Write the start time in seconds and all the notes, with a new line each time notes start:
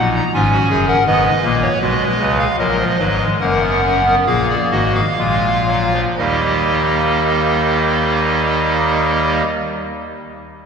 Already playing: D#4
0.00 A#1 A#2
0.16 A#5
0.34 G#1 G#2 C#4 F4 G#5
0.52 F#4
0.69 F#1 F#2 G#4
0.87 A#4 F#5
1.06 G#1 G#2 B3 B4 D#5
1.44 A#1 A#2 A#3
1.62 C#5
1.81 B1 B2 G#3 D#5
2.20 C#2 C#3
2.39 F5
2.59 A#1 A#2 F#3 A#4 D#5
2.79 F3
2.99 G#1 G#2 F#3 B4
3.20 G#3
3.41 F#1 F#2 A#3 A#4 F#5
3.62 B3
3.83 C#4
4.05 B3
4.26 A#1 A#2 A#3 G#4 F5
4.49 D5
4.71 G#1 G#2 F#4 D#5
4.95 F5
5.19 A#1 A#2 G#3 F4
5.67 F#3
5.93 F3
6.18 D#2 D#3 G3 A#3 D#4 G4 D#5